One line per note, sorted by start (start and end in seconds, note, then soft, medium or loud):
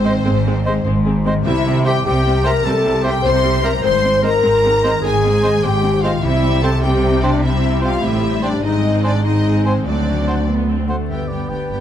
0.00 0.18 G#1 medium
0.00 0.18 G#2 medium
0.00 1.46 G#2 medium
0.00 0.22 G#3 medium
0.00 0.83 C4 medium
0.00 0.84 C4 medium
0.00 0.63 G#4 medium
0.00 0.53 C5 medium
0.00 0.84 C5 medium
0.00 0.86 C5 medium
0.00 0.83 C6 medium
0.04 0.13 G#3 medium
0.04 0.42 C4 medium
0.04 0.13 C4 medium
0.04 0.13 C5 medium
0.04 0.15 D#5 medium
0.14 0.33 D#3 medium
0.23 0.78 G#1 medium
0.23 0.79 G#2 medium
0.23 1.46 G#3 medium
0.23 0.33 G#3 medium
0.23 0.33 C4 medium
0.34 1.33 D#3 medium
0.43 0.55 G#3 medium
0.43 1.23 C4 medium
0.43 0.54 C4 medium
0.54 0.73 C5 medium
0.64 0.75 G#3 medium
0.64 0.74 C4 medium
0.64 1.03 G#4 medium
0.64 0.73 C5 medium
0.64 0.75 D#5 medium
0.74 0.94 C5 medium
0.84 1.38 G#1 medium
0.84 1.38 G#2 medium
0.84 0.94 G#3 medium
0.84 0.94 C4 medium
0.84 1.93 C6 medium
0.95 1.14 C5 medium
1.05 1.14 G#3 medium
1.05 1.14 C4 medium
1.05 1.47 G#4 medium
1.15 1.63 C5 medium
1.25 1.33 G#3 medium
1.25 1.53 C4 medium
1.25 1.33 C4 medium
1.25 1.33 C5 medium
1.25 1.35 D#5 medium
1.34 1.46 D#3 medium
1.44 1.98 C2 medium
1.44 3.85 C3 medium
1.44 1.98 C3 medium
1.44 1.54 G3 medium
1.44 1.53 C4 medium
1.44 1.82 E4 medium
1.44 1.82 E4 loud
1.44 1.82 E5 medium
1.54 2.63 C4 medium
1.64 1.74 G3 medium
1.64 1.74 C4 medium
1.64 1.83 C5 medium
1.75 2.33 G4 medium
1.84 1.95 G3 medium
1.84 1.95 C4 medium
1.84 2.04 G4 medium
1.84 2.05 G4 medium
1.84 2.24 C5 medium
1.84 1.92 C5 medium
1.84 1.94 E5 medium
1.84 2.04 G5 medium
1.84 2.05 G5 medium
1.94 2.13 C6 medium
2.04 2.58 C2 medium
2.04 2.58 C3 medium
2.04 2.15 G3 medium
2.04 2.15 C4 medium
2.04 2.44 G4 loud
2.04 2.47 G4 medium
2.04 3.23 G5 medium
2.04 2.44 G5 medium
2.04 2.45 G5 medium
2.15 3.13 C6 medium
2.25 2.34 G3 medium
2.25 2.34 C4 medium
2.25 2.43 C5 medium
2.35 2.93 G4 medium
2.44 2.53 G3 medium
2.44 2.53 C4 medium
2.44 2.65 A#4 loud
2.44 2.65 A#4 medium
2.44 2.51 C5 medium
2.44 2.83 C5 medium
2.44 2.54 E5 medium
2.44 2.65 A#5 medium
2.54 2.73 G3 soft
2.64 3.17 C2 medium
2.64 3.17 C3 medium
2.64 2.73 G3 medium
2.64 4.02 C4 medium
2.64 2.73 C4 medium
2.64 3.04 A4 medium
2.64 3.05 A4 medium
2.64 3.04 A5 medium
2.64 3.05 A5 medium
2.74 3.72 G3 medium
2.84 2.92 G3 medium
2.84 2.93 C4 medium
2.84 3.03 C5 medium
2.94 3.52 G4 medium
3.02 3.13 G3 medium
3.02 3.13 C4 medium
3.02 3.23 G4 medium
3.02 3.24 G4 loud
3.02 3.11 C5 medium
3.02 3.42 C5 medium
3.02 3.13 E5 medium
3.02 3.25 G5 medium
3.14 3.33 C6 medium
3.22 3.77 C2 medium
3.22 3.77 C3 medium
3.22 3.33 G3 medium
3.22 3.32 C4 medium
3.22 3.62 C5 loud
3.22 3.63 C5 medium
3.22 3.85 G5 medium
3.22 3.64 C6 medium
3.27 3.65 C6 medium
3.43 3.51 G3 medium
3.43 3.51 C4 medium
3.43 3.62 C5 medium
3.53 3.85 G4 medium
3.63 3.72 G3 medium
3.63 3.71 C4 medium
3.63 3.72 A#4 medium
3.63 3.73 A#4 medium
3.63 4.12 C5 medium
3.63 3.71 C5 medium
3.63 3.73 E5 medium
3.63 3.84 A#5 medium
3.73 3.85 G3 medium
3.82 4.36 G#1 medium
3.82 6.24 G#2 medium
3.82 4.37 G#2 medium
3.82 3.91 G#3 medium
3.82 3.90 C4 medium
3.82 4.22 C5 medium
3.82 4.22 C5 loud
3.82 4.23 C6 medium
3.82 4.24 C6 medium
3.93 5.01 G#3 medium
4.03 4.12 G#3 medium
4.03 4.81 C4 medium
4.03 4.11 C4 medium
4.14 4.32 C5 medium
4.23 4.31 G#3 medium
4.23 4.31 C4 medium
4.23 6.24 D#4 medium
4.23 5.01 A#4 medium
4.23 5.01 A#4 loud
4.23 4.31 C5 medium
4.23 4.33 D#5 medium
4.23 5.03 A#5 medium
4.23 5.03 A#5 loud
4.33 4.52 C5 medium
4.42 4.96 G#1 medium
4.42 4.97 G#2 medium
4.42 4.50 G#3 medium
4.42 4.50 C4 medium
4.42 5.62 C6 medium
4.53 4.71 C5 medium
4.64 4.72 G#3 medium
4.64 4.72 C4 medium
4.72 5.32 C5 medium
4.82 4.92 G#3 medium
4.82 5.22 C4 medium
4.82 4.92 C4 medium
4.82 4.90 C5 medium
4.82 4.93 D#5 medium
4.92 5.12 D#3 medium
5.02 5.56 G#1 medium
5.02 5.56 G#2 medium
5.02 6.24 G#3 medium
5.02 5.12 G#3 medium
5.02 5.12 C4 medium
5.02 5.65 G#4 medium
5.02 5.62 G#4 medium
5.02 5.63 G#5 medium
5.02 5.64 G#5 medium
5.13 6.11 D#3 medium
5.23 5.32 G#3 medium
5.23 6.01 C4 medium
5.23 5.31 C4 medium
5.33 5.52 C5 medium
5.43 5.52 G#3 medium
5.43 5.51 C4 medium
5.43 5.50 C5 medium
5.43 5.53 D#5 medium
5.53 5.72 C5 medium
5.62 6.16 G#1 medium
5.62 6.16 G#2 medium
5.62 5.70 G#3 medium
5.62 5.71 C4 medium
5.62 6.03 G4 medium
5.62 6.04 G4 loud
5.62 6.03 G5 medium
5.62 6.72 C6 medium
5.74 5.91 C5 medium
5.82 5.91 G#3 medium
5.82 5.91 C4 medium
5.82 6.24 G#4 medium
5.92 6.42 C5 medium
6.02 6.12 G#3 medium
6.02 6.32 C4 medium
6.02 6.12 C4 medium
6.02 6.22 F4 medium
6.02 6.24 F4 medium
6.02 6.11 C5 medium
6.02 6.13 D#5 medium
6.02 6.22 F5 medium
6.02 6.23 F5 medium
6.12 6.24 D#3 soft
6.21 7.99 C2 medium
6.21 8.65 C3 medium
6.21 7.99 C3 medium
6.21 6.79 G3 medium
6.21 6.79 C4 medium
6.21 6.61 E4 loud
6.21 6.62 E4 medium
6.21 6.63 E5 medium
6.33 7.42 C4 medium
6.44 6.62 C5 medium
6.53 7.11 G4 medium
6.63 6.82 A4 medium
6.63 6.72 A4 medium
6.63 6.70 C5 medium
6.63 7.02 C5 medium
6.63 6.72 G5 medium
6.63 6.83 A5 medium
6.73 6.91 C6 medium
6.82 7.42 G3 medium
6.82 7.41 C4 medium
6.82 7.22 G4 medium
6.82 7.21 G5 medium
6.82 7.22 G5 medium
6.82 8.01 G5 medium
6.92 7.91 C6 medium
7.03 7.20 C5 medium
7.12 7.71 G4 medium
7.22 7.42 D4 medium
7.22 7.44 D4 medium
7.22 7.61 C5 medium
7.22 7.30 C5 medium
7.22 7.42 D5 medium
7.22 7.43 D5 medium
7.22 7.32 G5 medium
7.32 7.51 G3 soft
7.42 8.02 G3 medium
7.42 8.02 C4 medium
7.42 11.12 C4 soft
7.42 7.82 E4 medium
7.42 7.83 E4 medium
7.42 7.82 E5 medium
7.52 8.51 G3 soft
7.62 7.81 C5 soft
7.72 8.31 G4 medium
7.81 8.01 F4 medium
7.81 8.03 F4 medium
7.81 7.89 C5 medium
7.81 8.21 C5 medium
7.81 8.03 F5 medium
7.85 7.94 G5 medium
7.92 8.12 C6 medium
8.01 8.64 A1 medium
8.01 8.63 A2 medium
8.01 8.62 G3 medium
8.01 8.62 C4 medium
8.01 8.45 E4 medium
8.01 8.43 E4 medium
8.01 8.43 E5 medium
8.01 8.44 E5 medium
8.01 8.65 G5 medium
8.13 9.23 C6 medium
8.22 8.41 C5 soft
8.32 8.64 G4 medium
8.42 8.63 D4 medium
8.42 8.93 C5 soft
8.42 8.50 C5 medium
8.42 8.62 D5 medium
8.42 8.64 D5 medium
8.42 8.52 G5 medium
8.52 8.65 G3 soft
8.62 9.84 G#1 medium
8.62 9.88 G#2 medium
8.62 9.84 G#2 medium
8.62 9.23 G#3 medium
8.62 9.23 C4 medium
8.62 9.03 D#4 medium
8.62 9.04 D#4 medium
8.62 9.03 D#5 medium
8.62 9.04 D#5 medium
8.73 9.88 G#3 soft
8.83 9.64 D#4 soft
8.94 9.54 C5 soft
9.03 9.13 D4 medium
9.03 9.26 D4 medium
9.03 9.45 G#4 medium
9.03 9.11 C5 medium
9.03 9.24 D5 medium
9.03 9.25 D5 medium
9.03 9.14 G#5 medium
9.14 9.34 D#5 medium
9.23 9.85 G#3 medium
9.23 9.86 C4 medium
9.23 9.65 D#4 medium
9.23 9.64 D#4 medium
9.23 9.64 D#5 medium
9.23 9.65 D#5 medium
9.23 10.47 C6 medium
9.35 9.89 D#5 soft
9.46 9.89 G#4 soft
9.56 10.16 C5 medium
9.63 9.86 C4 medium
9.63 9.76 C4 medium
9.63 9.88 D#4 soft
9.63 9.71 C5 medium
9.63 9.73 C5 medium
9.63 9.87 C5 medium
9.63 9.75 G#5 medium
9.76 9.88 D#3 soft
9.85 10.88 D2 medium
9.85 11.12 D3 medium
9.85 10.45 F#3 medium
9.85 10.43 C4 medium
9.85 10.48 D4 medium
9.85 10.47 D5 medium
9.97 11.12 A3 soft
10.07 10.89 F#4 soft
10.17 10.78 C5 soft
10.27 10.68 A4 soft
10.27 10.35 C5 medium
10.27 10.38 F#5 medium
10.37 10.57 F#5 soft
10.48 10.68 B3 medium
10.48 11.11 C6 soft
10.58 11.11 F#5 soft
10.69 10.90 C4 medium
10.69 11.12 A4 soft
10.79 11.12 C5 soft
10.88 11.10 A3 medium
10.88 11.12 F#4 soft
10.88 10.96 C5 medium
10.88 10.99 F#5 medium
11.00 11.80 D4 soft
11.09 11.18 G1 soft
11.09 11.80 G2 soft
11.09 11.18 G2 soft
11.09 11.80 D3 soft
11.09 11.30 B3 soft
11.09 11.28 G4 soft
11.09 11.80 G4 soft
11.09 11.80 B4 soft
11.09 11.30 E5 soft
11.09 11.29 G5 soft
11.28 11.38 G1 soft
11.28 11.39 G2 soft
11.28 11.50 B3 soft
11.28 11.80 B3 soft
11.28 11.49 G4 soft
11.28 11.51 D5 soft
11.28 11.50 G5 soft
11.49 11.58 G1 soft
11.49 11.59 G2 soft
11.49 11.70 B3 soft
11.49 11.67 G4 soft
11.49 11.80 D5 soft
11.49 11.80 G5 soft
11.49 11.69 G5 soft
11.68 11.78 G1 soft
11.68 11.79 G2 soft
11.68 11.80 B3 soft
11.68 11.80 G4 soft
11.68 11.80 B4 soft
11.68 11.80 G5 soft